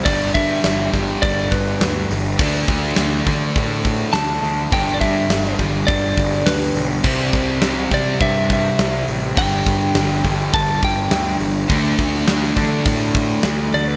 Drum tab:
CC |----------------|----------------|----------------|x---------------|
HH |o-o-o-o-o-o-o-o-|o-o-o-o-o-o-o-o-|o-o-o-o-o-o-o-o-|--o-o-o-o-o-o-o-|
SD |----o-------o-o-|----o-------o-o-|----oo------o-o-|----o-------o---|
BD |o-o---o-o-o-----|o-o---o-o-o-----|o-o---o-o-o-----|o-o---o-o-o-----|

CC |----------------|----------------|
HH |o-o-o-o-o-o-o-o-|o-o-o-o-o-o-o-o-|
SD |----o-------o---|----o-------o---|
BD |o-o---o-o-o-----|o-o---o-o-o-----|